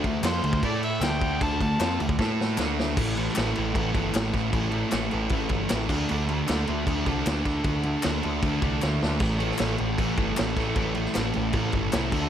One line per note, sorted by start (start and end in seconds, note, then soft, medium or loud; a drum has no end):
0.04 0.22 D2 medium
0.04 0.20 D3 medium
0.04 0.20 A3 medium
0.04 kick medium
0.04 crash medium
0.23 0.41 F2 loud
0.23 0.43 F3 medium
0.23 0.44 C4 loud
0.23 0.44 F4 loud
0.23 0.63 C5 medium
0.23 snare loud
0.23 clap loud
0.23 crash loud
0.43 0.61 D2 medium
0.43 0.59 D3 medium
0.43 0.60 A3 medium
0.43 crash medium
0.53 kick loud
0.63 0.99 A2 medium
0.63 1.00 A3 loud
0.63 1.02 E4 loud
0.63 1.02 A4 loud
0.63 0.83 D5 loud
0.63 kick loud
0.63 crash medium
0.83 1.05 E5 loud
0.83 crash medium
1.00 1.37 D2 loud
1.00 1.40 D3 loud
1.00 1.40 A3 loud
1.00 1.41 D4 loud
1.00 1.41 G5 loud
1.00 snare loud
1.00 clap loud
1.00 crash medium
1.21 kick medium
1.21 crash medium
1.41 1.59 D2 medium
1.41 1.60 D3 loud
1.41 1.61 A3 loud
1.41 1.61 D4 loud
1.41 1.61 A5 loud
1.41 kick loud
1.41 crash medium
1.60 1.79 D2 medium
1.60 1.77 D3 medium
1.60 1.77 A3 medium
1.60 1.99 A5 loud
1.60 kick medium
1.60 crash medium
1.80 1.98 F2 loud
1.80 1.99 F3 loud
1.80 2.00 C4 loud
1.80 2.00 F4 loud
1.80 snare loud
1.80 clap loud
1.80 crash medium
2.00 2.18 D2 loud
2.00 2.16 D3 medium
2.00 2.16 A3 medium
2.00 crash medium
2.09 kick medium
2.19 2.56 A2 medium
2.19 2.57 A3 loud
2.19 2.58 E4 loud
2.19 2.59 A4 loud
2.19 kick loud
2.19 snare medium
2.41 snare medium
2.58 2.95 D2 loud
2.58 2.96 D3 loud
2.58 2.97 A3 loud
2.58 2.97 D4 loud
2.58 snare loud
2.58 clap loud
2.80 snare loud
2.96 3.28 A1 loud
2.96 3.34 A2 medium
2.96 3.18 E3 loud
2.96 3.15 A3 loud
2.96 kick loud
2.96 crash loud
2.96 crash medium
3.15 3.35 E3 medium
3.15 3.37 A3 medium
3.15 crash medium
3.28 snare soft
3.34 3.52 A1 medium
3.34 3.71 A2 loud
3.34 3.55 E3 loud
3.34 3.53 A3 loud
3.34 snare loud
3.34 clap loud
3.34 crash medium
3.53 3.73 E3 medium
3.53 3.75 A3 medium
3.53 crash medium
3.58 3.72 A1 loud
3.72 3.91 A1 medium
3.72 3.94 A2 medium
3.72 3.93 E3 medium
3.72 3.92 A3 medium
3.72 kick loud
3.72 crash medium
3.93 4.10 G1 medium
3.93 4.10 A2 medium
3.93 4.12 E3 medium
3.93 4.14 A3 medium
3.93 kick loud
3.93 crash medium
4.11 4.49 A2 medium
4.11 4.34 E3 medium
4.11 4.32 A3 loud
4.11 clap loud
4.11 crash medium
4.15 4.30 A1 medium
4.15 snare loud
4.32 4.49 A1 loud
4.32 4.51 E3 medium
4.32 4.53 A3 medium
4.32 kick medium
4.32 snare soft
4.32 crash medium
4.50 4.83 A1 loud
4.50 4.88 A2 medium
4.50 4.71 E3 loud
4.50 4.69 A3 loud
4.50 kick loud
4.50 crash medium
4.70 4.91 E3 medium
4.70 4.92 A3 medium
4.70 crash medium
4.89 5.08 A1 medium
4.89 5.28 A2 loud
4.89 5.12 E3 medium
4.89 5.10 A3 loud
4.89 snare loud
4.89 clap loud
4.89 crash medium
5.10 5.28 A1 loud
5.10 5.29 E3 medium
5.10 5.32 A3 medium
5.10 crash medium
5.29 5.46 A1 medium
5.29 5.51 A2 medium
5.29 5.50 E3 medium
5.29 5.49 A3 medium
5.29 kick loud
5.29 crash medium
5.49 5.65 G1 medium
5.49 5.67 A2 medium
5.49 5.68 E3 medium
5.49 5.70 A3 medium
5.49 kick medium
5.49 crash medium
5.68 5.86 A1 medium
5.68 5.88 A2 medium
5.68 5.88 E3 medium
5.68 5.88 A3 medium
5.68 snare loud
5.68 clap loud
5.68 crash medium
5.88 6.04 D2 medium
5.88 6.07 D3 medium
5.88 6.09 A3 medium
5.88 6.11 D4 medium
5.88 kick loud
5.88 snare soft
5.88 crash loud
6.08 6.40 D2 loud
6.08 6.47 D3 loud
6.08 6.29 A3 loud
6.08 6.26 D4 loud
6.08 crash medium
6.27 6.48 A3 medium
6.27 6.49 D4 medium
6.27 crash medium
6.47 6.64 D2 medium
6.47 6.85 D3 loud
6.47 6.69 A3 loud
6.47 6.66 D4 loud
6.47 snare loud
6.47 clap loud
6.47 crash medium
6.66 6.83 D2 loud
6.66 6.87 A3 medium
6.66 6.88 D4 medium
6.66 crash medium
6.86 7.02 D2 medium
6.86 7.08 D3 medium
6.86 7.07 A3 medium
6.86 7.04 D4 loud
6.86 kick medium
6.86 crash medium
7.05 7.22 C2 medium
7.05 7.25 D3 medium
7.05 7.27 A3 medium
7.05 7.27 D4 medium
7.05 kick medium
7.05 crash medium
7.26 7.41 D2 loud
7.26 7.63 D3 medium
7.26 7.48 A3 medium
7.26 7.43 D4 medium
7.26 snare loud
7.26 clap loud
7.26 crash medium
7.45 7.61 D2 medium
7.45 7.65 A3 medium
7.45 7.66 D4 medium
7.45 kick medium
7.45 snare soft
7.45 crash medium
7.64 7.95 D2 medium
7.64 8.02 D3 medium
7.64 7.87 A3 loud
7.64 7.83 D4 loud
7.64 kick loud
7.64 crash medium
7.83 8.05 A3 medium
7.83 8.06 D4 medium
7.83 crash medium
8.03 8.20 D2 medium
8.03 8.42 D3 medium
8.03 8.26 A3 loud
8.03 snare loud
8.03 clap loud
8.03 crash medium
8.07 8.21 D4 loud
8.23 8.39 D2 loud
8.23 8.45 A3 medium
8.23 8.45 D4 medium
8.23 crash medium
8.42 8.58 D2 loud
8.42 8.63 D3 medium
8.42 8.62 A3 medium
8.42 8.60 D4 medium
8.42 kick loud
8.42 crash medium
8.61 8.78 C2 medium
8.61 8.80 D3 medium
8.61 8.83 A3 medium
8.61 8.84 D4 medium
8.61 kick loud
8.61 crash medium
8.81 8.98 D2 loud
8.81 9.20 D3 medium
8.81 9.03 A3 medium
8.81 8.99 D4 medium
8.81 snare medium
8.81 clap medium
9.00 9.17 D2 loud
9.00 9.22 A3 medium
9.00 9.19 D4 medium
9.00 snare medium
9.20 9.51 A1 loud
9.20 9.58 A2 medium
9.20 9.42 E3 loud
9.20 9.39 A3 loud
9.20 kick loud
9.20 splash medium
9.20 crash medium
9.39 9.60 E3 medium
9.39 9.61 A3 medium
9.39 crash medium
9.51 snare soft
9.58 9.75 A1 medium
9.58 9.97 A2 loud
9.58 9.80 E3 loud
9.58 9.77 A3 loud
9.58 snare loud
9.58 clap medium
9.58 crash medium
9.78 9.95 A1 medium
9.78 9.99 E3 medium
9.78 10.01 A3 medium
9.78 crash medium
9.98 10.14 A1 medium
9.98 10.18 A2 medium
9.98 10.17 E3 medium
9.98 10.16 A3 medium
9.98 kick medium
9.98 crash loud
10.16 10.33 G1 medium
10.16 10.35 A2 medium
10.16 10.37 E3 medium
10.16 10.39 A3 medium
10.16 kick medium
10.16 crash medium
10.36 10.54 A1 medium
10.36 10.75 A2 medium
10.36 10.57 E3 medium
10.36 10.55 A3 medium
10.36 snare loud
10.36 clap loud
10.36 crash medium
10.56 10.72 A1 loud
10.56 10.76 E3 medium
10.56 10.78 A3 medium
10.56 kick medium
10.56 snare soft
10.56 crash medium
10.76 11.06 A1 loud
10.76 11.13 A2 loud
10.76 10.96 E3 loud
10.76 10.94 A3 loud
10.76 kick loud
10.76 crash medium
10.94 11.15 E3 medium
10.94 11.16 A3 medium
10.94 crash medium
11.05 snare soft
11.14 11.31 A1 loud
11.14 11.52 A2 loud
11.14 11.35 E3 loud
11.14 11.33 A3 loud
11.14 snare loud
11.14 clap loud
11.14 crash medium
11.33 11.51 A1 loud
11.33 11.54 E3 medium
11.33 11.56 A3 medium
11.33 crash medium
11.53 11.69 A1 medium
11.53 11.75 A2 medium
11.53 11.73 E3 medium
11.53 11.73 A3 medium
11.53 kick medium
11.53 crash medium
11.72 11.89 G1 loud
11.72 11.92 A2 medium
11.72 11.95 E3 medium
11.72 11.97 A3 medium
11.72 kick medium
11.72 crash medium
11.92 12.09 C2 loud
11.92 12.12 A2 medium
11.92 snare loud
11.92 clap medium
11.92 crash medium
11.96 12.13 E3 medium
11.96 12.12 A3 medium
12.12 12.27 D2 loud
12.12 12.29 D3 medium
12.12 12.29 A3 medium
12.12 12.29 D4 medium
12.12 kick loud
12.12 snare soft
12.12 crash loud